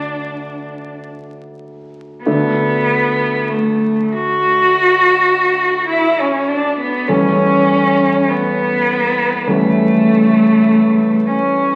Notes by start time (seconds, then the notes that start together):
Already playing: D2 D4 A4 D5 F#5
2.23 D2 A3 B3 D4
3.49 A3
4.13 F#4
5.88 E4
6.21 C#4
6.49 D4
6.80 B3
7.08 E2 G3 A3 C#4
8.29 B3
9.47 E2 G3 A3 C#4
11.27 C#4